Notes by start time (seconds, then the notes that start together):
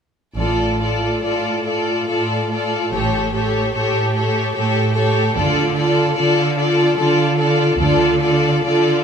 0.36 A1 A2 F4 A4 D5
0.80 F4 A4 D5
1.23 A2 F4 A4 D5
1.66 F4 A4 D5
2.07 A2 F4 A4 D5
2.50 F4 A4 D5
2.92 A1 A2 G4 A4 C#5
3.34 G4 A4 C#5
3.75 A2 G4 A4 C#5
4.13 G4 A4 C#5
4.55 A2 G4 A4 C#5
4.94 G4 A4 C#5
5.35 D2 D3 F4 A4 D5
5.75 F4 A4 D5
6.16 D3 F4 A4 D5
6.57 F4 A4 D5
6.98 D3 F4 A4 D5
7.38 F4 A4 D5
7.78 D2 D3 F4 A4 D5
8.21 F4 A4 D5
8.64 D3 F4 A4 D5